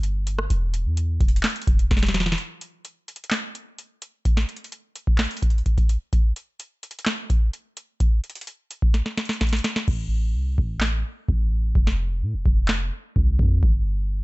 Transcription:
Already playing: G1
0.03 closed hi-hat
0.27 closed hi-hat
0.39 cross-stick
0.50 E1, closed hi-hat
0.74 closed hi-hat
0.85 E2
0.97 closed hi-hat
1.21 E1, kick, closed hi-hat
1.28 closed hi-hat
1.36 closed hi-hat
1.43 snare, clap, closed hi-hat
1.50 closed hi-hat
1.56 closed hi-hat
1.62 closed hi-hat
1.67 E1, kick, closed hi-hat
1.79 closed hi-hat
1.91 E1, kick, snare, closed hi-hat
1.97 snare, closed hi-hat
2.03 snare, closed hi-hat
2.09 snare
2.14 snare, closed hi-hat
2.20 snare
2.26 snare
2.32 snare
2.38 closed hi-hat
2.61 closed hi-hat
2.85 closed hi-hat
3.08 closed hi-hat
3.16 closed hi-hat
3.24 closed hi-hat
3.31 snare, clap, closed hi-hat
3.55 closed hi-hat
3.78 closed hi-hat
4.02 closed hi-hat
4.25 kick, closed hi-hat
4.37 snare
4.49 closed hi-hat
4.57 closed hi-hat
4.64 closed hi-hat
4.72 closed hi-hat
4.96 closed hi-hat
5.07 kick
5.18 snare, clap, closed hi-hat
5.25 closed hi-hat
5.31 closed hi-hat
5.37 closed hi-hat
5.42 kick, closed hi-hat
5.50 closed hi-hat
5.58 closed hi-hat
5.66 kick, closed hi-hat
5.78 kick, closed hi-hat
5.89 closed hi-hat
6.13 kick, closed hi-hat
6.36 closed hi-hat
6.60 closed hi-hat
6.83 closed hi-hat
6.91 closed hi-hat
6.99 closed hi-hat
7.06 snare, clap, closed hi-hat
7.30 kick, closed hi-hat
7.53 closed hi-hat
7.77 closed hi-hat
8.00 kick, closed hi-hat
8.24 closed hi-hat
8.30 closed hi-hat
8.35 closed hi-hat
8.41 closed hi-hat
8.47 closed hi-hat
8.71 closed hi-hat
8.82 kick
8.94 snare, closed hi-hat
9.06 snare
9.18 snare, closed hi-hat
9.25 snare, closed hi-hat
9.33 closed hi-hat
9.41 kick, snare, closed hi-hat
9.47 closed hi-hat
9.49 snare, closed hi-hat
9.53 closed hi-hat
9.57 closed hi-hat
9.59 closed hi-hat
9.64 snare, closed hi-hat
9.76 snare
9.88 A1, kick, crash
10.35 C2
10.58 A1, kick
10.81 snare, clap
11.29 A1, kick
11.75 F1, kick
11.87 snare
12.22 A2
12.34 F1
12.46 F1, kick
12.68 snare, clap
13.16 C2, kick
13.39 F2, kick
13.63 G1, kick

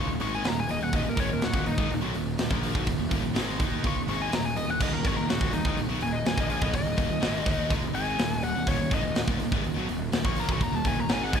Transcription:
Already playing: D#3 A#3 D#4 F#4
0.08 D#1 D#2 A#2
0.20 G#1 G#2 D#3 G#3 C#6, open hi-hat
0.35 G#5
0.44 D#1 D#2 A#2 A#5, snare, open hi-hat
0.60 G#5
0.69 D#1 D#2 A#2 D#5, open hi-hat
0.81 D#1 D#2 A#2 F#5
0.93 D#1 D#2 A#2 D#5, kick, open hi-hat
1.06 D#1 D#2 A#2 A#4
1.16 G#1 G#2 D#3 C#5, kick, open hi-hat
1.29 D#1 D#2 A#2 A#4
1.41 D#1 D#2 A#2 F#4, snare, open hi-hat
1.53 D#1 D#2 A#2, kick
1.66 D#1 D#2 A#2 D#4, open hi-hat
1.78 G#1 G#2 D#3, kick
1.90 D#1 D#2 A#2, open hi-hat
2.01 B1 B2 F#3
2.14 D#1 D#2 A#2, open hi-hat
2.38 D#1 D#2 A#2, snare, open hi-hat
2.51 A#1 A#2 F3 A#3, kick
2.63 open hi-hat
2.75 B1 B2 F#3, kick
2.87 D#1 D#2 A#2, kick, open hi-hat
2.99 D#1 D#2 A#2
3.11 D#1 D#2 A#2, kick, open hi-hat
3.24 D#1 D#2 A#2
3.34 G#1 G#2 D#3 G#3, snare, open hi-hat
3.60 D#2 D#3 A#3 D#4, kick, open hi-hat
3.84 C#2 C#3 G#3 C#6, kick, open hi-hat
3.95 D#1 D#2 A#2
4.07 G#1 G#2 D#3 G#3 C#6, open hi-hat
4.22 G#5
4.31 D#1 D#2 A#2 A#5, snare, open hi-hat
4.45 G#5
4.56 D#1 D#2 A#2 D#5, open hi-hat
4.68 D#1 D#2 A#2 F#5
4.80 D#1 D#2 A#2 D#5, kick, crash
4.92 D#1 D#2 A#2 A#4
5.04 G#1 G#2 D#3 C#5, kick, open hi-hat
5.16 D#1 D#2 A#2 A#4
5.28 D#1 D#2 A#2 F#4, snare, open hi-hat
5.41 D#1 D#2 A#2, kick
5.51 D#1 D#2 A#2 D#4, open hi-hat
5.64 G#1 G#2 D#3, kick
5.75 D#1 D#2, open hi-hat
5.79 A#2
5.88 B1 B2 F#3
6.00 D#1 D#2 A#2 G#5, open hi-hat
6.13 D#5
6.24 D#1 D#2 A#2 G#5, snare, open hi-hat
6.37 A#1 A#2 F3 A#3 D#5, kick
6.50 G#5, open hi-hat
6.62 B1 B2 F#3 D#5, kick
6.73 D#1 D#2 A#2 D#5, kick, open hi-hat
6.85 D#1 D#2 A#2
6.97 D#1 D#2 A#2, kick, open hi-hat
7.09 D#1 D#2 A#2
7.20 G#1 G#2 D#3 G#3, snare, open hi-hat
7.46 D#2 D#3 A#3 D#4, kick, open hi-hat
7.70 C#2 C#3 G#3, kick, open hi-hat
7.81 D#1 D#2 A#2
7.93 G#1 G#2 D#3 G#3 G#5, open hi-hat
8.18 D#1 D#2 A#2, snare, open hi-hat
8.43 D#1 D#2 A#2 F#5, open hi-hat
8.55 D#1 D#2 A#2
8.67 D#1 D#2 A#2 C#5, kick, open hi-hat
8.78 D#1 D#2 A#2
8.91 G#1 G#2 D#3 D#5, kick, open hi-hat
9.03 D#1 D#2 A#2
9.15 D#1 D#2 A#2, snare, open hi-hat
9.27 D#1 D#2 A#2, kick
9.39 D#1 D#2 A#2, open hi-hat
9.52 G#1 G#2 D#3, kick
9.63 D#1 D#2 A#2, open hi-hat
9.74 B1 B2 F#3
9.88 D#1 D#2 A#2, open hi-hat
10.12 D#1 D#2 A#2, snare, open hi-hat
10.24 A#1 A#2 F3 A#3 C#6, kick
10.36 A#5, open hi-hat
10.47 B1 B2 F#3, kick
10.52 C#6
10.59 D#1 D#2 A#2 A#5, kick, open hi-hat
10.72 D#1 D#2 A#2 A5
10.84 D#1 D#2 A#2 G#5, kick, open hi-hat
10.97 D#1 D#2 A#2 A#5
11.09 G#1 G#2 D#3 G#3, snare, open hi-hat
11.13 G#5
11.24 F#5
11.33 D#2 D#3 A#3 D#4 G#5, kick, open hi-hat

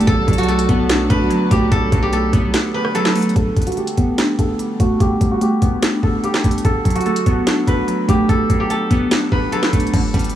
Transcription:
Already playing: G4 D5 A5
0.01 closed hi-hat
0.07 B1 D3 F#4 A4 B4, kick, closed hi-hat
0.27 B1 F#3, kick, closed hi-hat
0.33 closed hi-hat
0.38 F#4, closed hi-hat
0.43 closed hi-hat
0.48 A3 A4, closed hi-hat
0.59 closed hi-hat
0.69 B1 B3, kick, closed hi-hat
0.89 D4, snare, clap, closed hi-hat
1.10 B1 D3 B4, kick, closed hi-hat
1.30 F#3, closed hi-hat
1.51 B1 A3 G4, kick, closed hi-hat
1.71 B1 D3 A4, kick, closed hi-hat
1.92 B1 F#3, kick, closed hi-hat
2.02 G4
2.13 A3 A4, closed hi-hat
2.33 B1 B3, kick, closed hi-hat
2.54 D4, snare, clap, closed hi-hat
2.74 D3 B4
2.85 cross-stick
2.95 F#3 A4, closed hi-hat
3.05 snare, clap
3.15 A3, closed hi-hat, open hi-hat
3.22 closed hi-hat
3.29 closed hi-hat
3.36 D3 A4, kick, closed hi-hat
3.57 G3, kick, closed hi-hat
3.62 closed hi-hat
3.67 F#4, closed hi-hat
3.72 closed hi-hat
3.77 A3 G4, closed hi-hat
3.87 closed hi-hat
3.97 B3, kick, closed hi-hat
4.18 D4, snare, clap, closed hi-hat
4.39 D3 A4, kick, closed hi-hat
4.59 G3, closed hi-hat
4.80 A3 F#4, kick, closed hi-hat
5.00 D3 G4, kick, closed hi-hat
5.21 G3, kick, closed hi-hat
5.31 F#4
5.41 A3 G4, closed hi-hat
5.62 B3, kick, closed hi-hat
5.82 D4, snare, clap, closed hi-hat
6.03 D3 A4, kick
6.24 G3 G4, closed hi-hat
6.34 snare, clap
6.44 A3, kick, closed hi-hat
6.51 closed hi-hat
6.58 closed hi-hat
6.65 D3 A4, kick, closed hi-hat
6.85 F#3, kick, closed hi-hat
6.90 closed hi-hat
6.96 F#4, closed hi-hat
7.01 closed hi-hat
7.06 A3 A4, closed hi-hat
7.16 closed hi-hat
7.26 B3, kick, closed hi-hat
7.47 D4, snare, clap, closed hi-hat
7.67 D3 B4, kick, closed hi-hat
7.88 F#3, closed hi-hat
8.08 A3 G4, kick, closed hi-hat
8.29 D3 A4, kick, closed hi-hat
8.50 F#3, kick, closed hi-hat
8.60 G4
8.70 A3 A4, closed hi-hat
8.90 B3, kick, closed hi-hat
9.11 D4, snare, clap, closed hi-hat
9.32 D3 B4, kick
9.52 F#3 A4, closed hi-hat
9.63 snare, clap
9.73 A3, kick, closed hi-hat
9.80 closed hi-hat
9.87 closed hi-hat
9.93 G1 D3, kick, closed hi-hat, crash
10.14 G1 G3, kick, closed hi-hat
10.19 closed hi-hat
10.24 closed hi-hat
10.30 closed hi-hat

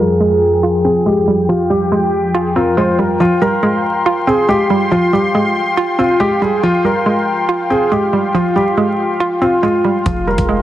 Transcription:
Already playing: F2 F3 F4 G#4 G5
0.00 G3 A#4
0.20 G#3
0.63 F4
0.85 C4 G#4
1.06 G#3 G4
1.28 G3
1.49 F3 F4 G4
1.70 G3 G4
1.92 G#3
2.35 F4 G#4
2.56 C4 F4 A#4
2.77 G#3 F4 C5
2.99 G3 A#4
3.20 F3 F4 F5 G5 C6
3.42 G3 A#4
3.63 G#3
4.06 F4
4.27 C4 G#4
4.49 G#3 G4
4.70 G3
4.92 F3 F4
5.13 G3 G4
5.35 G#3
5.77 F4
5.99 C4 F4
6.20 G#3 G4
6.42 G3 G#4
6.63 F3 F4 C6
6.85 G3 A#4
7.06 G#3
7.49 F4
7.70 C4 G#4
7.92 G#3 G4
8.13 G3
8.34 F3 F4
8.56 G3 G4
8.77 G#3
9.20 F4
9.42 C4 F4
9.63 G#3 F4
9.85 G3
10.06 F1 F3 F4 G#4 G5, kick, closed hi-hat
10.27 G3 A#4
10.38 F1, kick, closed hi-hat
10.49 G#3

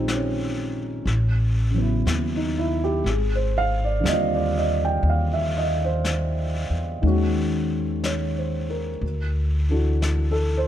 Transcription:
Already playing: A#1 D#3 G#3 C4 C#4 D#4 F4 G4
0.08 brush sweep, snare, hi-hat pedal
0.14 C#4
1.06 A1, brush sweep, snare
1.71 C#3 F#3
1.78 B3 E4
2.06 D#2, brush sweep, snare, hi-hat pedal
2.36 D#4
2.58 E4
2.84 G4
3.04 G#1, brush sweep, snare
3.09 G#4
3.35 C5
3.58 F5
3.85 D5
4.00 D#2 D3 G3
4.05 C4 D#5, brush sweep, snare, hi-hat pedal
4.11 F4
4.35 D5
4.58 D#5
4.85 G5
5.03 D#2, brush sweep
5.10 F5
5.34 E5
5.58 D#5
5.85 C5
6.05 brush sweep, snare, hi-hat pedal
6.70 E2
7.01 D#2 D#3 G#3 C#4, brush sweep
7.07 F#4
8.04 C#5, brush sweep, snare, hi-hat pedal
8.38 C5
8.70 A#4
9.01 D2, brush sweep
9.69 E3 D4 F#4 A4
10.02 brush sweep, snare, hi-hat pedal
10.31 A4
10.58 C5

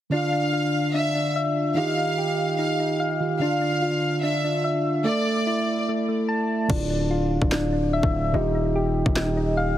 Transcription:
0.10 D3 D4 F4 F5
0.33 D4
0.53 F4
0.94 D4 E5
1.15 D4
1.36 E5
1.74 D#3 D#4 F4 G4 F5
1.97 D#4
2.18 G4
2.58 D#4 F5
2.80 D#4
3.00 F5
3.20 D#3 D#4 F4 G4
3.39 D3 D4 F4 F5
3.61 D4
3.82 F4
4.23 D4 E5
4.44 D4
4.64 E5
5.04 A3 A4 D5 E5
5.26 A3
5.47 E4
5.89 A3
6.08 A3
6.28 A5
6.68 D1 D3 D4 E4 F4, kick, crash
6.90 D4
7.11 F4
7.42 D1, kick
7.52 D4, snare, clap
7.73 D4
7.93 E5
8.03 D1, kick
8.32 D#1 D#3 D#4 F4 G4
8.55 D#4
8.75 G4
9.06 D#1, kick
9.16 D#4, snare, clap
9.37 D#4 D#5
9.57 F5

